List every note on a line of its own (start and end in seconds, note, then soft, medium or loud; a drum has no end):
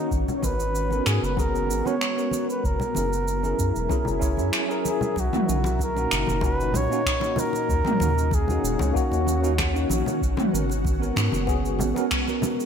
0.00 0.17 D#4 medium
0.10 0.25 G#1 medium
0.10 2.61 G#3 medium
0.10 2.61 B3 medium
0.10 2.61 F#4 medium
0.10 kick loud
0.10 cabasa soft
0.28 low conga medium
0.28 cabasa soft
0.37 0.51 B3 medium
0.37 0.46 C#5 medium
0.41 1.01 G#1 medium
0.41 0.52 C#4 medium
0.41 0.52 F#4 medium
0.41 0.53 A#4 medium
0.41 1.08 B4 loud
0.41 kick medium
0.41 high conga medium
0.41 cabasa medium
0.60 cabasa soft
0.75 cabasa soft
0.89 1.33 B3 medium
0.89 1.34 C#4 medium
0.89 1.34 F#4 medium
0.89 1.35 A#4 medium
0.89 high conga medium
0.89 cabasa soft
1.06 1.19 G#2 loud
1.06 1.25 G#4 medium
1.06 finger snap medium
1.06 cabasa medium
1.23 1.71 F#1 loud
1.23 1.41 B4 medium
1.23 cabasa soft
1.36 1.81 B3 medium
1.36 1.82 C#4 medium
1.36 1.82 F#4 medium
1.36 1.83 G#4 loud
1.36 1.88 A#4 loud
1.36 kick loud
1.36 high conga medium
1.36 cabasa soft
1.55 cabasa soft
1.69 1.82 G#1 medium
1.69 cabasa medium
1.85 1.94 B3 medium
1.85 1.95 C#4 medium
1.85 1.95 F#4 medium
1.85 1.95 A#4 loud
1.85 2.50 C#5 medium
1.85 high conga medium
1.85 cabasa soft
2.01 finger snap medium
2.01 cabasa soft
2.17 2.62 B3 medium
2.17 2.63 C#4 medium
2.17 2.63 F#4 medium
2.17 2.64 A#4 medium
2.17 cabasa soft
2.31 high conga medium
2.31 cabasa medium
2.50 2.67 B4 medium
2.50 cabasa soft
2.64 2.77 F#1 medium
2.64 5.15 F#3 medium
2.64 5.15 E4 medium
2.64 5.15 A#4 medium
2.64 4.54 A#4 medium
2.64 kick loud
2.64 cabasa soft
2.80 low conga medium
2.80 cabasa soft
2.95 3.54 F#1 medium
2.95 3.05 C#4 medium
2.95 3.05 E4 medium
2.95 3.06 G#4 medium
2.95 3.07 A#4 medium
2.95 high conga medium
2.95 cabasa medium
3.13 cabasa soft
3.28 cabasa soft
3.43 3.87 C#4 medium
3.43 3.87 E4 medium
3.43 3.88 G#4 medium
3.43 3.88 A#4 medium
3.43 high conga medium
3.43 cabasa soft
3.59 3.72 F#2 loud
3.59 kick medium
3.59 cabasa medium
3.76 3.88 E1 medium
3.76 cabasa soft
3.89 4.18 C#4 medium
3.89 4.19 E4 medium
3.89 4.19 G#4 medium
3.89 4.20 A#4 medium
3.89 kick loud
3.89 high conga medium
3.89 cabasa soft
4.05 4.40 F#1 medium
4.05 low conga medium
4.05 cabasa soft
4.20 4.65 C#4 medium
4.20 4.66 E4 medium
4.20 4.66 G#4 medium
4.20 4.67 C#5 loud
4.20 kick loud
4.20 cabasa medium
4.37 4.51 F#2 medium
4.37 high conga medium
4.37 cabasa soft
4.53 finger snap medium
4.53 cabasa soft
4.68 5.14 C#4 medium
4.68 5.15 E4 medium
4.68 5.15 G#4 medium
4.68 5.16 A#4 loud
4.68 cabasa soft
4.85 5.21 G#4 medium
4.85 high conga medium
4.85 cabasa medium
5.01 low conga medium
5.01 cabasa soft
5.16 5.30 B1 loud
5.16 7.35 A#2 medium
5.16 7.36 D#4 medium
5.16 5.81 F#4 loud
5.16 kick medium
5.16 muted conga medium
5.16 cabasa soft
5.33 mid tom medium
5.33 high conga medium
5.33 cabasa soft
5.47 6.07 B1 medium
5.47 5.57 A#3 medium
5.47 5.58 C#4 medium
5.47 5.58 D#4 medium
5.47 5.59 F#4 medium
5.47 cabasa medium
5.64 muted conga medium
5.64 cabasa soft
5.79 kick loud
5.79 high conga medium
5.79 cabasa soft
5.83 6.47 A#4 loud
5.95 6.39 A#3 medium
5.95 6.39 C#4 medium
5.95 6.40 D#4 medium
5.95 6.40 F#4 medium
5.95 muted conga medium
5.95 cabasa soft
6.11 6.25 F#1 medium
6.11 finger snap medium
6.11 cabasa medium
6.27 6.76 F#1 loud
6.27 high conga medium
6.27 cabasa soft
6.41 6.87 A#2 medium
6.41 6.87 C#4 medium
6.41 6.88 D#4 medium
6.41 kick loud
6.41 muted conga medium
6.41 cabasa soft
6.45 6.88 F#4 loud
6.45 6.78 B4 loud
6.60 cabasa soft
6.74 6.88 B1 medium
6.74 7.41 C#5 loud
6.74 muted conga medium
6.74 high conga medium
6.74 low conga medium
6.74 cabasa medium
6.90 6.99 A#3 medium
6.90 7.00 C#4 medium
6.90 7.00 D#4 medium
6.90 7.01 F#4 medium
6.90 cabasa soft
7.06 finger snap medium
7.06 kick loud
7.06 cabasa soft
7.20 7.96 A#3 medium
7.20 7.97 C#4 medium
7.20 7.98 D#4 medium
7.20 muted conga medium
7.20 cabasa soft
7.26 7.99 F#4 medium
7.36 10.19 D#3 medium
7.36 10.19 C#4 medium
7.36 12.66 F#4 medium
7.36 8.35 A#4 loud
7.36 high conga medium
7.36 low conga medium
7.36 cabasa medium
7.53 muted conga medium
7.53 cabasa soft
7.69 7.82 D#2 medium
7.69 kick loud
7.69 cabasa soft
7.85 mid tom medium
7.85 high conga medium
7.85 cabasa soft
8.00 8.59 D#2 medium
8.00 8.10 A#3 medium
8.00 8.11 C#4 medium
8.00 8.11 D#4 medium
8.00 8.12 F#4 medium
8.00 muted conga medium
8.00 cabasa medium
8.18 cabasa soft
8.31 8.95 G#4 medium
8.31 kick loud
8.31 muted conga medium
8.31 high conga medium
8.31 cabasa soft
8.48 8.92 A#3 medium
8.48 8.92 C#4 medium
8.48 8.93 D#4 medium
8.48 8.93 F#4 medium
8.48 low conga medium
8.48 cabasa soft
8.63 8.77 D#1 medium
8.63 cabasa medium
8.79 8.93 C#2 loud
8.79 muted conga medium
8.79 high conga loud
8.79 cabasa soft
8.93 9.38 A#3 medium
8.93 9.39 C#4 medium
8.93 9.40 D#4 medium
8.93 9.40 F#4 loud
8.93 9.87 F#4 medium
8.93 kick loud
8.93 cabasa soft
9.12 9.85 D#2 medium
9.12 muted conga soft
9.12 cabasa soft
9.27 high conga medium
9.27 cabasa medium
9.42 9.52 A#3 medium
9.42 9.52 C#4 medium
9.42 9.53 D#4 medium
9.42 9.53 F#4 medium
9.42 cabasa soft
9.58 finger snap medium
9.58 kick loud
9.58 muted conga medium
9.58 cabasa soft
9.73 10.19 A#3 medium
9.73 10.20 C#4 medium
9.73 10.20 D#4 medium
9.73 10.21 F#4 medium
9.73 cabasa soft
9.90 10.03 A#1 medium
9.90 muted conga soft
9.90 high conga medium
9.90 cabasa medium
10.06 low conga medium
10.06 cabasa soft
10.21 10.35 G#1 loud
10.21 12.66 G#3 medium
10.21 12.66 B3 medium
10.21 kick loud
10.21 cabasa soft
10.37 mid tom medium
10.37 muted conga medium
10.37 high conga medium
10.37 cabasa soft
10.51 11.12 G#1 medium
10.51 10.62 B3 medium
10.51 10.63 C#4 medium
10.51 10.63 F#4 medium
10.51 10.64 A#4 medium
10.51 cabasa medium
10.70 muted conga soft
10.70 cabasa soft
10.84 kick loud
10.84 high conga medium
10.84 cabasa soft
11.00 11.44 B3 medium
11.00 11.44 C#4 medium
11.00 11.45 F#4 medium
11.00 11.45 A#4 medium
11.00 cabasa soft
11.16 11.30 G#2 medium
11.16 finger snap medium
11.16 muted conga medium
11.16 cabasa medium
11.32 11.82 F#1 medium
11.32 high conga medium
11.32 cabasa soft
11.47 11.92 B3 medium
11.47 11.92 C#4 medium
11.47 11.93 F#4 medium
11.47 11.93 G#4 loud
11.47 kick loud
11.47 muted conga medium
11.47 cabasa soft
11.65 cabasa soft
11.79 11.93 G#1 medium
11.79 high conga medium
11.79 low conga loud
11.79 cabasa medium
11.94 12.04 B3 medium
11.94 12.05 C#4 medium
11.94 12.05 F#4 medium
11.94 12.06 A#4 loud
11.94 muted conga medium
11.94 cabasa soft
12.11 finger snap medium
12.11 kick loud
12.11 cabasa soft
12.26 12.66 B3 medium
12.26 12.66 C#4 medium
12.26 12.66 F#4 medium
12.26 12.66 A#4 medium
12.26 muted conga soft
12.26 cabasa soft
12.42 high conga medium
12.42 low conga medium
12.42 cabasa medium
12.60 cabasa soft